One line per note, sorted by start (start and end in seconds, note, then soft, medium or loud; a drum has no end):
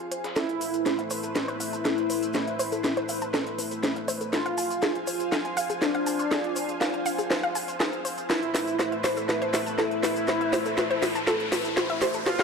0.00 0.32 F4 medium
0.00 0.32 C5 medium
0.00 0.32 F5 medium
0.00 0.32 G#5 medium
0.11 0.21 C5 medium
0.11 closed hi-hat medium
0.11 tambourine medium
0.24 snare soft
0.24 closed hi-hat soft
0.36 4.29 A3 medium
0.36 4.29 E4 medium
0.36 1.01 E4 loud
0.36 0.48 A4 medium
0.36 4.29 B4 medium
0.36 4.29 C5 medium
0.36 snare soft
0.36 closed hi-hat soft
0.36 cabasa soft
0.49 closed hi-hat soft
0.61 0.71 B4 medium
0.61 open hi-hat loud
0.61 cabasa medium
0.74 closed hi-hat soft
0.74 cabasa medium
0.86 0.98 C5 medium
0.86 snare soft
0.86 closed hi-hat soft
0.86 cabasa soft
0.99 1.08 E5 medium
0.99 closed hi-hat soft
1.10 1.17 C5 loud
1.10 open hi-hat loud
1.10 cabasa medium
1.23 1.33 A4 medium
1.23 closed hi-hat soft
1.23 cabasa medium
1.35 1.48 B4 medium
1.35 snare soft
1.35 closed hi-hat soft
1.35 cabasa soft
1.48 1.57 C5 loud
1.48 closed hi-hat soft
1.60 1.66 E5 medium
1.60 open hi-hat loud
1.60 cabasa medium
1.73 1.84 A5 medium
1.73 closed hi-hat soft
1.73 cabasa medium
1.85 3.24 E4 loud
1.85 1.97 A4 loud
1.85 snare soft
1.85 closed hi-hat soft
1.85 cabasa soft
1.98 closed hi-hat soft
2.10 2.20 B4 medium
2.10 open hi-hat loud
2.10 cabasa medium
2.23 closed hi-hat soft
2.23 cabasa soft
2.33 2.47 C5 medium
2.33 snare soft
2.33 closed hi-hat soft
2.33 cabasa soft
2.47 2.57 E5 medium
2.47 closed hi-hat soft
2.59 2.65 C5 loud
2.59 open hi-hat loud
2.59 cabasa loud
2.72 2.81 A4 medium
2.72 closed hi-hat soft
2.72 cabasa medium
2.84 2.96 B4 medium
2.84 snare medium
2.84 closed hi-hat soft
2.84 cabasa soft
2.97 3.06 C5 loud
2.97 closed hi-hat soft
3.09 3.15 E5 medium
3.09 open hi-hat loud
3.09 cabasa medium
3.21 3.33 A5 medium
3.21 closed hi-hat soft
3.21 cabasa soft
3.34 3.46 A4 loud
3.34 snare medium
3.34 closed hi-hat soft
3.34 cabasa soft
3.47 closed hi-hat soft
3.59 3.68 B4 medium
3.59 open hi-hat loud
3.59 cabasa medium
3.71 closed hi-hat soft
3.71 cabasa medium
3.83 3.96 C5 medium
3.83 snare medium
3.83 closed hi-hat soft
3.83 cabasa soft
3.96 4.05 E5 medium
3.96 closed hi-hat soft
4.08 4.14 C5 loud
4.08 open hi-hat loud
4.08 cabasa loud
4.21 4.30 A4 medium
4.21 closed hi-hat soft
4.21 cabasa medium
4.33 8.26 F4 medium
4.33 4.98 F4 loud
4.33 4.45 C5 medium
4.33 12.43 C5 medium
4.33 8.26 F5 medium
4.33 8.26 G#5 medium
4.33 snare medium
4.33 closed hi-hat soft
4.33 cabasa soft
4.46 4.55 F5 loud
4.46 closed hi-hat soft
4.58 4.64 G#5 medium
4.58 open hi-hat loud
4.58 cabasa medium
4.71 4.82 C6 medium
4.71 closed hi-hat soft
4.71 cabasa medium
4.82 4.95 G#4 loud
4.82 snare medium
4.82 closed hi-hat soft
4.82 cabasa soft
4.95 closed hi-hat soft
5.07 5.17 C5 medium
5.07 open hi-hat loud
5.07 cabasa medium
5.20 closed hi-hat soft
5.20 cabasa medium
5.32 5.44 F5 medium
5.32 snare medium
5.32 closed hi-hat soft
5.32 cabasa soft
5.45 5.54 G#5 medium
5.45 closed hi-hat soft
5.57 5.63 F5 loud
5.57 open hi-hat loud
5.57 cabasa loud
5.70 5.79 G#4 medium
5.70 closed hi-hat soft
5.70 cabasa medium
5.82 7.21 D4 loud
5.82 5.94 C5 medium
5.82 snare medium
5.82 closed hi-hat soft
5.82 cabasa soft
5.95 6.04 F5 loud
5.95 closed hi-hat soft
6.06 6.12 G#5 medium
6.06 open hi-hat loud
6.06 cabasa medium
6.19 6.31 C6 medium
6.19 closed hi-hat soft
6.19 cabasa medium
6.31 6.44 G#4 loud
6.31 snare medium
6.31 closed hi-hat soft
6.31 cabasa soft
6.44 closed hi-hat soft
6.56 6.66 C5 medium
6.56 open hi-hat loud
6.56 cabasa loud
6.68 closed hi-hat soft
6.68 cabasa soft
6.81 6.93 F5 medium
6.81 snare medium
6.81 closed hi-hat soft
6.81 cabasa soft
6.94 7.03 G#5 medium
6.94 closed hi-hat soft
7.06 7.12 F5 loud
7.06 open hi-hat loud
7.06 cabasa medium
7.19 7.28 G#4 medium
7.19 closed hi-hat soft
7.19 cabasa medium
7.30 7.43 C5 medium
7.30 snare medium
7.30 closed hi-hat soft
7.30 cabasa soft
7.43 7.52 F5 loud
7.43 closed hi-hat soft
7.55 7.61 G#5 medium
7.55 open hi-hat loud
7.55 cabasa medium
7.68 7.80 C6 medium
7.68 closed hi-hat soft
7.68 cabasa medium
7.80 7.92 G#4 loud
7.80 snare medium
7.80 closed hi-hat soft
7.80 cabasa soft
7.93 closed hi-hat soft
8.05 8.15 C5 medium
8.05 open hi-hat loud
8.05 cabasa medium
8.18 closed hi-hat soft
8.18 cabasa soft
8.30 12.22 A3 medium
8.30 12.22 E4 medium
8.30 8.95 E4 loud
8.30 8.42 A4 loud
8.30 12.22 B4 medium
8.30 snare medium
8.30 closed hi-hat soft
8.30 riser medium
8.30 cabasa soft
8.43 closed hi-hat soft
8.54 8.64 B4 medium
8.54 snare medium
8.54 open hi-hat loud
8.54 cabasa medium
8.67 closed hi-hat soft
8.67 cabasa soft
8.79 8.91 C5 medium
8.79 snare medium
8.79 closed hi-hat soft
8.79 cabasa soft
8.92 9.01 E5 medium
8.92 closed hi-hat soft
9.04 9.10 C5 loud
9.04 snare medium
9.04 open hi-hat loud
9.04 cabasa loud
9.17 9.26 A4 medium
9.17 closed hi-hat soft
9.17 cabasa medium
9.29 9.41 B4 medium
9.29 snare medium
9.29 closed hi-hat soft
9.29 cabasa soft
9.42 9.51 C5 loud
9.42 closed hi-hat soft
9.54 9.59 E5 medium
9.54 snare medium
9.54 open hi-hat loud
9.54 cabasa medium
9.66 9.78 A5 medium
9.66 closed hi-hat soft
9.66 cabasa medium
9.78 11.18 E4 loud
9.78 9.91 A4 loud
9.78 snare medium
9.78 closed hi-hat soft
9.78 cabasa soft
9.91 closed hi-hat soft
10.03 10.13 B4 medium
10.03 snare medium
10.03 open hi-hat loud
10.03 cabasa medium
10.16 closed hi-hat soft
10.16 cabasa medium
10.27 10.40 C5 medium
10.27 snare medium
10.27 closed hi-hat soft
10.27 cabasa soft
10.41 10.50 E5 medium
10.41 closed hi-hat soft
10.53 10.59 C5 loud
10.53 snare medium
10.53 open hi-hat loud
10.53 cabasa medium
10.65 10.75 A4 medium
10.65 closed hi-hat soft
10.65 cabasa soft
10.77 10.90 B4 medium
10.77 snare medium
10.77 closed hi-hat soft
10.77 cabasa soft
10.91 11.00 C5 loud
10.91 closed hi-hat soft
11.02 11.08 E5 medium
11.02 snare medium
11.02 open hi-hat loud
11.02 cabasa medium
11.15 11.27 A5 medium
11.15 closed hi-hat soft
11.15 cabasa soft
11.27 11.39 A4 loud
11.27 snare medium
11.27 closed hi-hat soft
11.27 cabasa soft
11.40 closed hi-hat soft
11.52 11.62 B4 medium
11.52 snare medium
11.52 open hi-hat loud
11.52 cabasa medium
11.64 closed hi-hat soft
11.64 cabasa soft
11.77 11.89 C5 medium
11.77 snare medium
11.77 closed hi-hat soft
11.77 cabasa soft
11.90 11.99 E5 medium
11.90 closed hi-hat soft
12.01 12.07 C5 loud
12.01 snare medium
12.01 open hi-hat loud
12.01 cabasa loud
12.14 12.23 A4 medium
12.14 closed hi-hat soft
12.14 cabasa medium
12.26 12.43 F4 medium
12.26 12.43 F4 loud
12.26 12.39 C5 medium
12.26 12.43 F5 medium
12.26 12.43 G#5 medium
12.26 snare medium
12.26 closed hi-hat soft
12.26 cabasa soft
12.39 12.43 F5 loud
12.39 snare medium
12.39 closed hi-hat soft